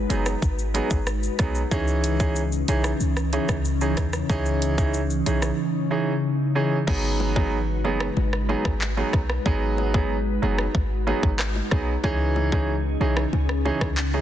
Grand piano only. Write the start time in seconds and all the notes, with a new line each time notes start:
0.10 F#3 B3 D#4 G#4
0.74 F#3 B3 D#4 G#4
1.39 F#3 B3 D#4 G#4
1.71 E3 C#4 D#4 G#4
2.20 E3 C#4 D#4 G#4
2.68 E3 C#4 D#4 G#4
3.33 E3 C#4 D#4 G#4
3.81 E3 C#4 D#4 G#4
4.29 E3 C#4 D#4 G#4
4.78 E3 C#4 D#4 G#4
5.26 E3 C#4 D#4 G#4
5.91 E3 C#4 D#4 G#4
6.55 E3 C#4 D#4 G#4
6.87 F#3 B3 D#4 G#4
7.36 F#3 B3 D#4 G#4
7.84 F#3 B3 D#4 G#4
8.49 F#3 B3 D#4 G#4
8.97 F#3 B3 D#4 G#4
9.46 F#3 B3 D#4 G#4
9.94 F#3 B3 D#4 G#4
10.42 F#3 B3 D#4 G#4
11.07 F#3 B3 D#4 G#4
11.71 F#3 B3 D#4 G#4
12.04 E3 C#4 D#4 G#4
12.52 E3 C#4 D#4 G#4
13.00 E3 C#4 D#4 G#4
13.65 E3 C#4 D#4 G#4
14.14 E3 C#4 D#4 G#4